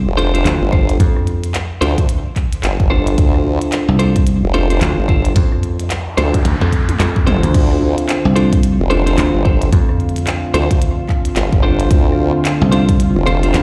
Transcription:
0.07 F1
0.17 D4 F4 A4 C5, closed hi-hat
0.34 D4 F4 A4 C5, closed hi-hat
0.45 D2, clap, closed hi-hat
0.61 G1
0.72 D4 F4 A4 C5, kick
0.89 closed hi-hat
1.00 F2, kick, closed hi-hat
1.16 cross-stick
1.27 closed hi-hat
1.44 closed hi-hat
1.55 clap, closed hi-hat
1.81 D2 D4 F4 A4 C5, closed hi-hat
1.98 kick, closed hi-hat
2.09 closed hi-hat
2.36 kick, clap, closed hi-hat
2.53 closed hi-hat
2.63 G1, clap, closed hi-hat
2.80 G1, kick
2.90 D4 F4 A4 C5
3.07 closed hi-hat
3.18 D2, kick, closed hi-hat
3.34 cross-stick
3.61 closed hi-hat
3.72 clap, closed hi-hat
3.88 C2
3.99 D4 F4 A4 C5, closed hi-hat
4.16 kick, closed hi-hat
4.27 closed hi-hat
4.43 F1
4.54 D4 F4 A4 C5, closed hi-hat
4.70 D4 F4 A4 C5, closed hi-hat
4.81 D2, clap, closed hi-hat
4.98 G1
5.08 D4 F4 A4 C5, kick
5.25 closed hi-hat
5.36 F2, kick, closed hi-hat, noise sweep
5.52 cross-stick
5.63 closed hi-hat
5.80 closed hi-hat
5.91 clap, closed hi-hat
6.17 D2 D4 F4 A4 C5, closed hi-hat
6.34 kick, closed hi-hat
6.45 D2, snare, closed hi-hat
6.61 F2, snare
6.72 kick, closed hi-hat
6.89 closed hi-hat, mid tom
7.00 F2, snare, clap, closed hi-hat
7.16 kick
7.27 G1 D4 F4 A4 C5, kick, closed hi-hat, mid tom
7.43 D2, closed hi-hat
7.54 D2 D3 A3 C4 F4, kick, closed hi-hat, crash
7.71 cross-stick
7.98 closed hi-hat
8.09 clap, closed hi-hat
8.25 C2
8.36 D4 F4 A4 C5, closed hi-hat
8.53 kick, closed hi-hat
8.63 closed hi-hat
8.80 F1
8.90 D4 F4 A4 C5, closed hi-hat
9.06 D4 F4 A4 C5, closed hi-hat
9.18 D2, clap, closed hi-hat
9.34 G1
9.45 D4 F4 A4 C5, kick
9.62 closed hi-hat
9.73 F2, kick, closed hi-hat
9.89 cross-stick
10.00 closed hi-hat
10.09 closed hi-hat
10.16 closed hi-hat
10.18 closed hi-hat
10.27 clap, closed hi-hat
10.54 D2 D4 F4 A4 C5, closed hi-hat
10.71 kick, closed hi-hat
10.82 closed hi-hat
11.09 kick, clap
11.25 closed hi-hat
11.36 G1, clap, closed hi-hat
11.52 G1, kick
11.63 D4 F4 A4 C5
11.80 closed hi-hat
11.91 D2, kick, closed hi-hat
12.12 cross-stick
12.45 clap, closed hi-hat
12.61 C2
12.72 D4 F4 A4 C5, closed hi-hat
12.89 kick, closed hi-hat
13.00 closed hi-hat
13.16 F1
13.26 D4 F4 A4 C5, closed hi-hat
13.43 D4 F4 A4 C5, closed hi-hat
13.54 D2, clap, closed hi-hat

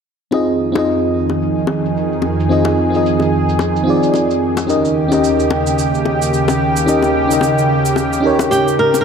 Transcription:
0.31 F2 D#3 C4 D#4 F4 G#4 D#5, high bongo
0.49 cabasa
0.72 C4 D#4 F4, high bongo
0.77 G#4 D#5
0.87 cabasa
1.03 cabasa
1.30 high bongo, cabasa
1.42 cabasa
1.58 cabasa
1.67 high bongo
1.85 cabasa
1.97 cabasa
2.13 cabasa
2.22 high bongo
2.40 cabasa
2.49 C4 D#4 F4 G#4 D#5, cabasa
2.65 high bongo, cabasa
2.90 C4 D#4 F4
2.94 G#4 D#5, cabasa
3.06 cabasa
3.20 high bongo, cabasa
3.49 cabasa
3.59 high bongo, cabasa
3.76 cabasa
3.84 C4 D#4 F4
3.89 G#4 D5
4.03 cabasa
4.14 high bongo, cabasa
4.31 cabasa
4.57 high bongo, cabasa
4.67 D#2 C#3 C#4 D#4 G4 A#4 D#5, cabasa
4.85 cabasa
5.08 C#4 D#4 G4, high bongo, cabasa
5.13 A#4 D#5
5.24 cabasa
5.40 cabasa
5.51 high bongo
5.67 cabasa
5.79 cabasa
5.95 cabasa
6.06 high bongo
6.22 cabasa
6.34 cabasa
6.48 high bongo, cabasa
6.76 cabasa
6.86 C#4 D#4 G4 A#4 D#5, cabasa
7.02 high bongo, cabasa
7.27 C#4 D#4 G4, cabasa
7.32 A#4 D#5
7.41 high bongo, cabasa
7.58 cabasa
7.85 cabasa
7.96 high bongo, cabasa
8.13 cabasa
8.20 C#4 D#4 G4
8.25 A#4 C#5
8.39 high bongo, cabasa
8.51 G4, cabasa
8.68 cabasa
8.79 A#4
8.94 high bongo, cabasa
9.01 A#4

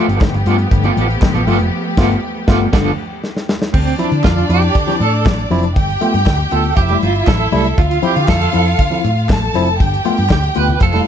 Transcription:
Already playing: F3 A3 B3 G4
0.08 G1 B3 F4 D5, closed hi-hat
0.21 G2 D3, muted clean electric guitar stroke, kick, snare, clap, high conga
0.34 G1, muted clean electric guitar stroke, closed hi-hat
0.46 G2 A3 B3 F4 A4 D5, closed hi-hat
0.58 B3 F4, muted clean electric guitar stroke, closed hi-hat
0.71 G1 G2 D3, muted clean electric guitar stroke, kick, closed hi-hat
0.84 A3 B3 F4 A4 D5, closed hi-hat
0.97 A1 B3 F4 A4 D5, closed hi-hat, muted conga
1.09 muted clean electric guitar stroke, closed hi-hat
1.22 G2 D3, muted clean electric guitar stroke, kick, snare, clap, high conga
1.34 A1 B3 F4 A4 D5, closed hi-hat
1.46 G1 A3 B3 F4 A4 D5, open hi-hat, high conga
1.59 F1 B3 F4, muted clean electric guitar stroke, closed hi-hat
1.97 G1 A3 B3 F4 A4 D5, kick, snare, crash
2.47 G1 A3 B3 F4 A4 D5, kick, snare
2.73 G1 G2 D3 B3 F4 A4 D5, kick, snare, crash
3.24 snare
3.37 snare
3.49 snare
3.62 snare
3.74 D2 D3 C4 D4 D5, kick, crash
3.87 closed hi-hat
3.98 F3 C4 D4 E4, closed hi-hat, muted conga
4.11 D3 C4 E4, closed hi-hat
4.24 F2 D3 F4, kick, snare, clap, high conga
4.38 closed hi-hat
4.49 F2 F3 C4 E4 G4, closed hi-hat
4.62 C4 E4, closed hi-hat
4.75 D3, kick, closed hi-hat
4.87 F3 C4 E4, snare, closed hi-hat
5.00 A2 C4 E4 A4, closed hi-hat, muted conga
5.14 closed hi-hat
5.25 A1, kick, snare, clap, high conga
5.38 closed hi-hat
5.50 F1 F3 C4 E4, open hi-hat, high conga
5.63 closed hi-hat
5.76 G1 G2 D3 G4 G5, kick, closed hi-hat, muted conga
5.90 closed hi-hat
6.01 A3 B3 F4, closed hi-hat, muted conga
6.13 G2 B3 F4, closed hi-hat
6.26 D2 G2 D3, kick, snare, clap, high conga
6.40 closed hi-hat
6.51 D2 A3 B3 F4 A4, closed hi-hat
6.64 B3 F4, closed hi-hat
6.77 F1 F3 E4 G4 E5, kick, closed hi-hat
6.88 G3 A3 E4, closed hi-hat
7.02 G1 A3 E4 F4, closed hi-hat, muted conga
7.15 closed hi-hat
7.27 A1 A4, kick, snare, clap, high conga
7.39 closed hi-hat
7.52 C2 G3 A3 E4, open hi-hat, high conga
7.64 closed hi-hat
7.77 D2 D3 F4 F5, kick, closed hi-hat, muted conga
7.91 closed hi-hat
8.02 F3 C4 E4 G4, closed hi-hat, muted conga
8.15 D3 C4 E4, closed hi-hat
8.28 F2 D3 A4, kick, snare, clap, high conga
8.42 closed hi-hat
8.53 F2 F3 C4 E4, closed hi-hat
8.66 C4 E4, closed hi-hat
8.79 D3, kick, closed hi-hat
8.90 F3 C4 E4, closed hi-hat
9.04 A2 C4 E4, closed hi-hat, muted conga
9.17 closed hi-hat
9.29 A1 A4 A5, kick, snare, clap, high conga
9.42 closed hi-hat
9.54 F1 F3 C4 E4, open hi-hat, high conga
9.67 closed hi-hat
9.79 G1 G2 D3 G4 G5, kick, closed hi-hat, muted conga
9.94 closed hi-hat
10.05 A3 B3 F4, closed hi-hat, muted conga
10.18 G2 B3 F4, closed hi-hat
10.30 D2 G2 D3 G4, kick, snare, clap, high conga
10.43 closed hi-hat
10.55 D2 A3 B3 F4 B4, closed hi-hat
10.67 B3 F4, closed hi-hat, low conga
10.80 F1 F3 F4 A4 F5, kick, closed hi-hat
10.92 G3 A3 E4, snare, closed hi-hat

